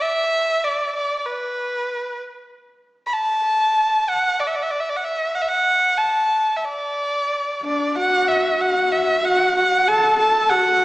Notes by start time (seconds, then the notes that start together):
0.01 E5
0.64 D5
0.95 D5
1.19 D5
1.26 B4
3.07 B5
3.13 A5
4.09 F#5
4.39 D5
4.46 E5
4.55 D5
4.63 E5
4.71 D5
4.80 E5
4.89 D5
4.96 F#5
5.04 E5
5.35 F#5
5.42 E5
5.48 F#5
5.98 A5
6.56 E5
6.65 D5
7.62 D4 D5
7.96 F#4 F#5
8.28 E5
8.61 F#4 F#5
8.92 E5
9.25 F#4 F#5
9.57 F#4 F#5
9.88 A4 A5
10.18 A4 A5
10.50 F#4 F#5